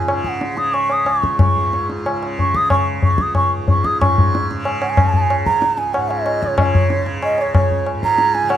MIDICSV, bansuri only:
0, 0, Header, 1, 2, 480
1, 0, Start_track
1, 0, Tempo, 326619
1, 121, Time_signature, 4, 2, 24, 8
1, 6840, Tempo, 320856
1, 12701, End_track
2, 0, Start_track
2, 0, Title_t, "Bansuri"
2, 0, Program_c, 0, 73
2, 370, Note_on_c, 0, 80, 76
2, 424, Note_on_c, 0, 78, 83
2, 439, Note_off_c, 0, 80, 0
2, 779, Note_off_c, 0, 78, 0
2, 779, Note_on_c, 0, 78, 64
2, 841, Note_on_c, 0, 87, 82
2, 864, Note_off_c, 0, 78, 0
2, 1084, Note_on_c, 0, 85, 91
2, 1106, Note_off_c, 0, 87, 0
2, 1354, Note_on_c, 0, 87, 81
2, 1376, Note_off_c, 0, 85, 0
2, 1606, Note_on_c, 0, 85, 81
2, 1628, Note_off_c, 0, 87, 0
2, 2071, Note_off_c, 0, 85, 0
2, 2085, Note_on_c, 0, 85, 83
2, 2742, Note_off_c, 0, 85, 0
2, 3530, Note_on_c, 0, 85, 85
2, 3763, Note_on_c, 0, 87, 94
2, 3785, Note_off_c, 0, 85, 0
2, 3983, Note_off_c, 0, 87, 0
2, 3992, Note_on_c, 0, 85, 91
2, 4207, Note_off_c, 0, 85, 0
2, 4480, Note_on_c, 0, 85, 76
2, 4729, Note_on_c, 0, 87, 78
2, 4751, Note_off_c, 0, 85, 0
2, 4940, Note_off_c, 0, 87, 0
2, 4949, Note_on_c, 0, 85, 80
2, 5164, Note_off_c, 0, 85, 0
2, 5434, Note_on_c, 0, 85, 78
2, 5658, Note_on_c, 0, 87, 86
2, 5680, Note_off_c, 0, 85, 0
2, 5884, Note_off_c, 0, 87, 0
2, 5893, Note_on_c, 0, 85, 89
2, 6555, Note_off_c, 0, 85, 0
2, 7082, Note_on_c, 0, 78, 77
2, 7207, Note_on_c, 0, 80, 100
2, 7230, Note_off_c, 0, 78, 0
2, 7930, Note_off_c, 0, 80, 0
2, 8042, Note_on_c, 0, 82, 100
2, 8523, Note_on_c, 0, 80, 86
2, 8545, Note_off_c, 0, 82, 0
2, 8760, Note_on_c, 0, 78, 97
2, 8782, Note_off_c, 0, 80, 0
2, 9019, Note_on_c, 0, 75, 86
2, 9041, Note_off_c, 0, 78, 0
2, 9490, Note_on_c, 0, 73, 91
2, 9512, Note_off_c, 0, 75, 0
2, 9724, Note_off_c, 0, 73, 0
2, 9733, Note_on_c, 0, 75, 93
2, 9799, Note_on_c, 0, 73, 101
2, 9814, Note_off_c, 0, 75, 0
2, 10402, Note_off_c, 0, 73, 0
2, 10703, Note_on_c, 0, 75, 104
2, 10968, Note_on_c, 0, 73, 87
2, 10990, Note_off_c, 0, 75, 0
2, 11189, Note_off_c, 0, 73, 0
2, 11195, Note_on_c, 0, 73, 82
2, 11628, Note_off_c, 0, 73, 0
2, 11906, Note_on_c, 0, 82, 117
2, 12360, Note_on_c, 0, 80, 100
2, 12382, Note_off_c, 0, 82, 0
2, 12589, Note_on_c, 0, 78, 103
2, 12611, Note_off_c, 0, 80, 0
2, 12701, Note_off_c, 0, 78, 0
2, 12701, End_track
0, 0, End_of_file